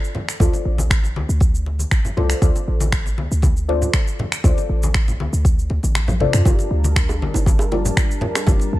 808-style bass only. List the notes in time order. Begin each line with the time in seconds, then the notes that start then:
0.40 D2
0.65 A1
1.16 D2
1.29 D2
1.92 A1
2.17 C2
2.42 D2
2.68 A1
3.18 D2
3.31 D2
4.44 D2
4.69 A1
5.19 D2
5.33 D2
5.70 D2
5.84 A1
6.34 F2
6.46 G1
6.71 D2
7.22 G1
7.35 G1
8.47 G1
8.73 D2